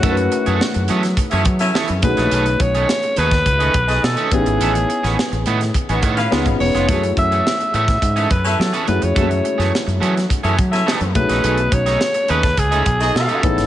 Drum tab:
HH |xxxx-xxxxxxx-xxx|xxxx-xxxxxxx-xxx|xxxx-xxxxxxx-xox|xxxx-xxxxxxx-xxx|
SD |----o--o---oo--o|----o--o---oo---|---oo--o---oo--o|----o--o---oo---|
BD |o-------o-o---o-|--o----oo-o---o-|--------o-o--o--|o-o----oo-o-----|

HH |xxxx-xxxxxxx-xxx|xxxx-xxxxxxx-xxx|
SD |---oo--o---oo--o|---oo--o---oo--o|
BD |o-------o-o---o-|--o----oo-o---o-|